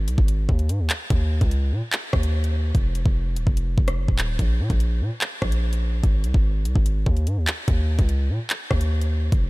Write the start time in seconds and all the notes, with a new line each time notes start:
0.08 C2, closed hi-hat
0.18 G#1, kick
0.28 closed hi-hat
0.49 D#2, kick
0.59 closed hi-hat
0.69 G#2, closed hi-hat
0.80 D#2
0.90 clap, closed hi-hat
1.10 D#2, kick, closed hi-hat
1.41 C#2, kick, closed hi-hat
1.51 closed hi-hat
1.72 A#2
1.93 clap, closed hi-hat
2.13 D#2, kick, cross-stick
2.23 closed hi-hat
2.44 closed hi-hat
2.75 F1, kick, closed hi-hat
2.95 closed hi-hat
3.06 F1, kick
3.36 D#1, closed hi-hat
3.47 F1, kick
3.57 closed hi-hat
3.78 F1, kick
3.88 cross-stick, closed hi-hat
3.98 F#1
4.08 D#1, kick
4.19 clap, closed hi-hat
4.39 A#1, kick, closed hi-hat
4.60 A#2
4.70 A#1, kick, closed hi-hat
4.80 closed hi-hat
5.01 A#2
5.21 clap, closed hi-hat
5.42 A#1, kick, cross-stick
5.52 closed hi-hat
5.73 closed hi-hat
6.04 G#1, kick, closed hi-hat
6.24 C2, closed hi-hat
6.34 G#1, kick
6.65 C2, closed hi-hat
6.76 G#1, kick
6.86 closed hi-hat
7.06 D#2, kick
7.17 closed hi-hat
7.27 G#2, closed hi-hat
7.37 D#2
7.47 clap, closed hi-hat
7.68 D#2, kick, closed hi-hat
7.99 C#2, kick, closed hi-hat
8.09 closed hi-hat
8.30 A#2
8.50 clap, closed hi-hat
8.71 D#2, kick, cross-stick
8.81 closed hi-hat
9.01 closed hi-hat
9.32 F1, kick, closed hi-hat